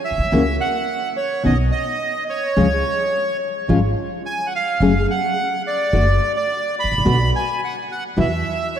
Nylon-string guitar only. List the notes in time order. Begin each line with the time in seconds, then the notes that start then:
0.32 C#3 E3 A#3 C#4 F#4
1.43 B2 D#3 B3 C#4
2.56 C#3 F3 G#3 C#4 F4
3.68 C#3 F3 G#3 C#4 F4
4.81 C#3 F#3 A3 C#4 G#4
5.93 D3 A3 D4 F#4
7.05 B2 D3 B3 D4 F#4
8.17 B2 E3 B3 E4 F#4